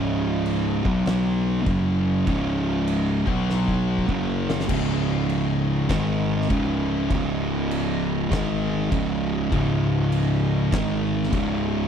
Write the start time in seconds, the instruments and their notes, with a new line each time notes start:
Already playing: picked electric bass C#1, distorted electric guitar C#2 G#2 C#3
0.46 crash
0.85 picked electric bass B1, distorted electric guitar B2 F#3 B3, kick
1.06 snare, crash
1.66 picked electric bass F#1, distorted electric guitar F#2 C#3 F#3, kick, crash
2.26 picked electric bass C#1, distorted electric guitar C#2 G#2 C#3, kick, crash
2.88 crash
3.26 picked electric bass B1, distorted electric guitar B2 F#3 B3, kick
3.50 snare
3.68 kick
3.98 kick
4.08 picked electric bass F#1, distorted electric guitar F#2 C#3 F#3, kick
4.50 snare
4.60 snare
4.68 picked electric bass C#1, distorted electric guitar C#2 G#2 C#3, kick, crash
5.30 crash
5.88 picked electric bass G#1, distorted electric guitar G#2 D#3 G#3, kick, snare, crash
6.41 snare
6.50 picked electric bass C#1, distorted electric guitar C#2 G#2 C#3, kick, crash
7.10 picked electric bass C#1, distorted electric guitar C#2 G#2 C#3, kick, crash
7.71 crash
8.30 picked electric bass G#1, distorted electric guitar G#2 D#3 G#3, kick, snare, crash
8.90 picked electric bass C#1, distorted electric guitar C#2 G#2 C#3, kick, crash
9.50 picked electric bass C#1, distorted electric guitar C#2 G#2 C#3, kick, crash
10.12 crash
10.71 picked electric bass G#1, distorted electric guitar G#2 D#3 G#3, kick, snare, crash
11.23 snare
11.31 picked electric bass C#1, distorted electric guitar C#2 G#2 C#3, kick, crash